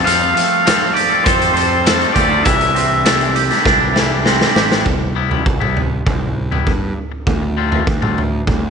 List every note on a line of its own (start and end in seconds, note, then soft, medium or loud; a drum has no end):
0.00 0.65 C4 medium
0.05 0.32 F2 loud
0.05 1.54 F3 medium
0.05 0.64 F3 medium
0.05 0.66 G3 medium
0.05 0.67 C4 medium
0.05 0.67 F4 loud
0.05 0.67 A4 loud
0.05 0.34 F5 loud
0.05 closed hi-hat loud
0.35 1.85 A3 medium
0.35 0.94 F5 loud
0.35 closed hi-hat medium
0.65 1.10 F3 medium
0.65 0.95 G3 medium
0.65 1.25 C4 medium
0.65 0.82 C4 loud
0.65 0.80 F4 medium
0.65 0.79 A4 loud
0.65 snare loud
0.65 closed hi-hat loud
0.80 0.95 C4 medium
0.80 0.95 F4 medium
0.80 0.95 A4 medium
0.94 2.15 G4 medium
0.94 1.26 D5 medium
0.94 muted clean electric guitar stroke soft
0.94 closed hi-hat medium
1.10 1.25 C4 medium
1.10 1.25 F4 medium
1.10 1.26 A4 medium
1.24 2.03 F2 loud
1.24 1.54 G3 medium
1.24 2.75 C4 medium
1.24 1.42 C4 medium
1.24 1.40 F4 medium
1.24 1.38 A4 medium
1.24 1.53 C5 medium
1.24 kick loud
1.24 closed hi-hat loud
1.39 1.55 C4 medium
1.39 1.55 F4 medium
1.39 1.56 A4 medium
1.39 closed hi-hat medium
1.54 2.45 F3 medium
1.54 1.85 G3 medium
1.54 1.85 C4 medium
1.54 1.85 F4 medium
1.54 1.86 A4 medium
1.54 2.11 C5 medium
1.54 closed hi-hat medium
1.84 2.30 F3 medium
1.84 2.14 G3 loud
1.84 2.46 A3 medium
1.84 2.02 C4 loud
1.84 2.00 F4 loud
1.84 1.98 A4 medium
1.84 snare loud
1.84 closed hi-hat loud
2.00 2.15 C4 medium
2.00 2.16 F4 medium
2.00 2.16 A4 medium
2.00 closed hi-hat soft
2.14 2.42 D2 medium
2.14 2.45 G3 medium
2.14 2.32 C4 medium
2.14 2.30 F4 medium
2.14 3.35 G4 medium
2.14 2.28 A4 medium
2.14 2.44 D5 medium
2.14 kick medium
2.14 closed hi-hat medium
2.30 2.45 C4 medium
2.30 2.44 F4 medium
2.30 2.43 A4 medium
2.44 3.49 C2 medium
2.44 3.03 C3 medium
2.44 3.04 E3 medium
2.44 3.94 E3 medium
2.44 3.05 G3 medium
2.44 3.06 D4 medium
2.44 3.06 E4 medium
2.44 4.22 E5 medium
2.44 kick loud
2.44 closed hi-hat loud
2.61 closed hi-hat medium
2.75 4.24 C4 medium
2.75 closed hi-hat medium
3.05 3.50 C3 medium
3.05 3.34 E3 medium
3.05 3.21 G3 loud
3.05 3.64 D4 medium
3.05 3.20 D4 loud
3.05 3.18 E4 loud
3.05 snare loud
3.05 closed hi-hat loud
3.19 3.34 G3 medium
3.19 3.35 D4 medium
3.19 3.35 E4 medium
3.19 closed hi-hat soft
3.35 4.54 G4 medium
3.35 muted clean electric guitar stroke soft
3.35 closed hi-hat medium
3.50 3.64 G3 medium
3.50 3.65 D4 medium
3.50 3.65 E4 medium
3.50 snare soft
3.50 closed hi-hat soft
3.64 4.43 C2 medium
3.64 3.92 E3 medium
3.64 3.81 G3 medium
3.64 4.86 D4 medium
3.64 3.79 D4 medium
3.64 3.78 E4 medium
3.64 kick loud
3.64 snare medium
3.79 3.94 G3 medium
3.79 3.94 D4 medium
3.79 3.95 E4 medium
3.93 4.24 E3 medium
3.93 4.86 E3 medium
3.93 4.24 G3 medium
3.93 4.25 D4 medium
3.93 4.26 E4 medium
3.93 snare medium
4.24 4.70 C3 loud
4.24 4.53 E3 loud
4.24 4.41 G3 loud
4.24 4.86 C4 medium
4.24 4.39 D4 medium
4.24 4.38 E4 medium
4.24 snare medium
4.39 4.54 G3 medium
4.39 4.55 D4 medium
4.39 4.56 E4 medium
4.39 snare medium
4.54 4.82 A1 medium
4.54 4.83 E3 medium
4.54 4.71 G3 medium
4.54 4.70 D4 medium
4.54 4.68 E4 medium
4.54 4.86 G4 medium
4.54 snare loud
4.69 4.85 G3 medium
4.69 4.84 D4 medium
4.69 4.84 E4 medium
4.69 snare loud
4.86 5.38 C2 medium
4.86 kick medium
4.86 floor tom medium
5.01 muted clean electric guitar stroke soft
5.15 5.31 C3 medium
5.15 5.30 G3 medium
5.15 5.30 B3 medium
5.15 5.29 E4 medium
5.31 5.45 C3 medium
5.31 5.45 G3 medium
5.31 5.45 B3 medium
5.31 5.46 E4 medium
5.31 floor tom medium
5.46 5.98 C2 medium
5.46 kick loud
5.60 5.81 C3 soft
5.60 5.81 G3 medium
5.60 5.81 B3 medium
5.60 5.80 E4 medium
5.60 mid tom medium
5.77 floor tom medium
6.06 6.58 C2 medium
6.06 muted clean electric guitar stroke soft
6.06 kick medium
6.06 floor tom medium
6.06 mid tom medium
6.51 6.72 C3 medium
6.51 6.72 G3 medium
6.51 6.71 B3 medium
6.51 6.71 E4 medium
6.51 floor tom medium
6.67 6.93 G2 medium
6.67 kick medium
7.12 muted clean electric guitar stroke soft
7.27 7.79 D2 medium
7.27 kick medium
7.27 floor tom medium
7.42 muted clean electric guitar stroke soft
7.57 7.72 D3 medium
7.57 7.71 A3 medium
7.57 7.71 C4 medium
7.57 7.70 F4 medium
7.72 7.86 D3 medium
7.72 7.86 A3 medium
7.72 7.86 C4 medium
7.72 7.86 F4 medium
7.72 floor tom medium
7.87 8.39 D2 medium
7.87 muted clean electric guitar stroke soft
7.87 kick loud
8.02 8.22 D3 medium
8.02 8.22 A3 medium
8.02 8.22 C4 medium
8.02 8.22 F4 medium
8.02 mid tom medium
8.18 floor tom medium
8.47 8.70 D2 medium
8.47 muted clean electric guitar stroke soft
8.47 kick medium
8.47 floor tom medium
8.47 mid tom medium